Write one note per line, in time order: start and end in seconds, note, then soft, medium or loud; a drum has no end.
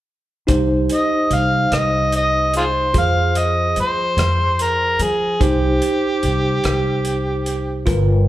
0.47 0.87 C2 medium
0.47 2.90 D#4 medium
0.47 2.90 G4 soft
0.47 2.90 C5 medium
0.47 kick medium
0.47 closed hi-hat medium
0.90 closed hi-hat soft
0.94 1.36 D#5 medium
1.30 1.68 C2 medium
1.30 1.76 F5 medium
1.30 closed hi-hat soft
1.71 2.91 C2 medium
1.71 2.14 D#5 medium
1.71 cross-stick medium
1.71 closed hi-hat medium
2.12 2.53 D#5 medium
2.12 closed hi-hat soft
2.54 2.64 F4 soft
2.54 2.66 G#4 soft
2.54 2.94 C5 medium
2.54 closed hi-hat soft
2.94 3.73 F2 medium
2.94 5.36 F4 soft
2.94 5.37 G#4 soft
2.94 5.37 C5 soft
2.94 kick medium
2.94 closed hi-hat medium
2.98 3.40 F5 medium
3.35 3.78 D#5 medium
3.35 closed hi-hat soft
3.76 4.15 F3 medium
3.76 closed hi-hat soft
3.81 4.63 C5 medium
4.17 4.95 F2 medium
4.17 cross-stick medium
4.17 closed hi-hat medium
4.59 5.04 A#4 medium
4.59 closed hi-hat medium
4.99 5.37 F3 medium
4.99 5.42 G#4 medium
4.99 closed hi-hat soft
5.40 5.79 C2 medium
5.40 7.83 D#4 soft
5.40 7.83 G4 soft
5.40 7.84 G4 medium
5.40 7.83 C5 medium
5.40 kick medium
5.40 closed hi-hat medium
5.82 closed hi-hat soft
6.23 6.61 C2 medium
6.23 closed hi-hat soft
6.64 7.83 C2 medium
6.64 cross-stick medium
6.64 closed hi-hat medium
7.05 closed hi-hat soft
7.46 closed hi-hat soft
7.86 8.28 G1 medium
7.86 8.28 F4 medium
7.86 8.28 A#4 soft
7.86 8.28 B4 soft
7.86 kick medium
7.86 closed hi-hat medium